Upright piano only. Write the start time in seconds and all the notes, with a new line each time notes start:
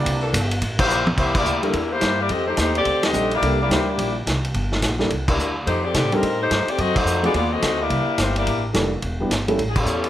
1.62 G3 A#3 D4 E4 A4
3.13 G3 C4 D4 D#4 A4
3.42 G3 A#3 D4 E4 A4
3.69 G3 A#3 D4 E4 G4
4.99 G3 A#3 D4 E4 A4
6.12 G3 C4 D4 D#4 A4
7.23 F#3 A3 C4 D#4 G#4
8.73 G3 A#3 D4 E4 A4
9.20 G3 B3 D4 E4 G4
9.48 G3 A3 C#4 E4 A4